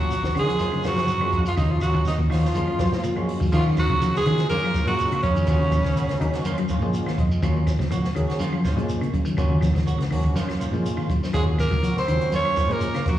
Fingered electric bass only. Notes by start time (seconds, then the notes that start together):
0.00 A#1
0.36 D#3
0.60 F#2
1.33 F2
1.57 D#2
1.81 D#2
2.05 D#2
2.31 D#2
2.54 F#2
2.79 F#3
2.92 A#2
3.16 F#2
3.41 F#3
3.53 D#3
3.90 C#3
4.26 D#3
4.39 muted fingered electric bass stroke
4.50 F#2
4.87 A#2
5.23 F2
5.48 D#2
5.84 C#2
6.21 D#2
6.44 F#2
6.81 A#2
7.18 F2
7.42 D#2
7.80 C#2
8.15 D#2
8.40 F#2
8.76 A#2
9.14 F#2
9.38 D#2
9.75 C#2
10.11 D#2
10.36 F#2
10.73 A#2
11.10 F#2
11.34 D#2
11.71 C#2
12.08 D#2
12.32 F#2
12.69 A#2
13.06 F2